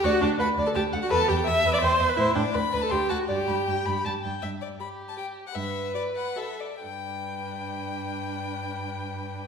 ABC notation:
X:1
M:3/4
L:1/16
Q:1/4=159
K:G
V:1 name="Violin"
f2 d2 b3 a g3 f | a2 g2 e'3 d' c'3 b | e2 d2 b3 a g2 f2 | g8 z4 |
e2 d2 b3 a g3 f | e4 d2 f2 e2 d2 | g12- | g12 |]
V:2 name="Violin"
d2 a2 f2 d2 a2 f2 | B2 g2 e2 B2 g2 e2 | c2 g2 d2 B2 c'2 a2 | d2 b2 g2 b2 a2 g2 |
z4 G8 | B8 A2 z2 | B12- | B12 |]
V:3 name="Viola"
F2 D2 B3 A G3 F | A2 G2 e3 d c3 B | E2 D2 B3 A G2 F2 | G8 z4 |
z4 G4 G4 | z4 F4 F4 | D12- | D12 |]
V:4 name="Cello" clef=bass
D,,2 D,,2 D,,2 D,,2 D,,2 D,,2 | E,,2 E,,2 E,,2 E,,2 E,,2 E,,2 | A,,2 A,,2 D,,2 D,,2 D,,2 D,,2 | G,,2 G,,2 G,,2 G,,2 G,,2 G,,2 |
G,,4 z8 | G,,4 z8 | G,,12- | G,,12 |]